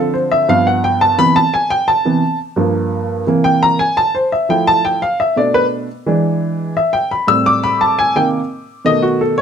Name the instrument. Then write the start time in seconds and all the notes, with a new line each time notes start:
upright piano
Already playing: D3 F3 C4 A4
0.14 C5
0.32 E5
0.48 G2 F3 B3 F5
0.67 F#5
0.84 G5
1.01 A5
1.18 C3 E3 B3 B5
1.36 A5
1.54 G#5
1.70 G5
1.88 A5
2.05 C3 E3 B3
2.56 G2 F3 A#3
3.27 C3 E3 A#3
3.44 G5
3.63 A#5
3.79 G#5
3.97 A5
4.15 C5
4.32 E5
4.49 F3 A3 E4 G5
4.67 A5
4.85 G5
5.02 F5
5.20 E5
5.36 B2 A3 D4 D5
5.54 B4
6.06 E3 G#3 D4
6.77 E5
6.93 G5
7.11 B5
7.27 A2 G3 C4 E6
7.46 D6
7.64 B5
7.81 A5
7.99 G#5
8.15 C3 D#3 A#3 G5
8.85 B2 D#3 A3 D#5
9.02 F#4
9.21 A4
9.38 C#5